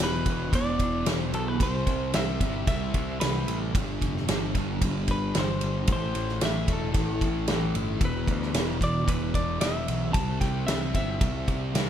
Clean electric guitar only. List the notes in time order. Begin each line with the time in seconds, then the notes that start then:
0.03 B4
0.55 D5
1.15 C5
1.35 A4
1.48 B4
1.63 C5
2.15 E5
2.68 E5
3.20 B4
5.11 B4
5.39 C5
5.93 C5
6.45 E5
6.73 A4
8.05 B4
8.84 D5
9.09 B4
9.35 D5
9.61 E5
10.13 A5
10.41 G5
10.67 E5
10.96 E5